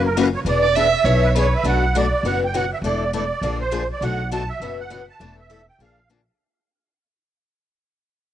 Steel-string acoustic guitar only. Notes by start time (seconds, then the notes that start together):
0.17 C#3 E3 A#3 C#4 F#4
0.46 E3 B3 D4 G#4
0.76 E3 B3 D4 G#4
1.05 E3 B3 D4 G#4
1.36 E3 B3 D4 G#4
1.64 B2 F#3 A3 D4 F#4
1.95 B2 F#3 A3 D4 F#4
2.25 B2 E3 B3 C#4 F#4
2.54 B2 E3 B3 C#4 F#4
2.84 E3 A3 D4 E4 A4
3.13 E3 A3 D4 E4 A4
3.43 D3 F3 A#3 D4 G#4
3.71 D3 F3 A#3 D4 G#4
4.02 B2 F#3 A3 D4 F#4
4.31 B2 F#3 A3 D4 F#4
4.62 B2 E3 B3 C#4 F#4
4.90 B2 E3 B3 C#4 F#4
5.20 E3 A3 D4 E4 A4
5.50 E3 A3 D4 E4 A4
5.80 D3 F3 A#3 D4 G#4
6.10 D3 F3 A#3 D4 G#4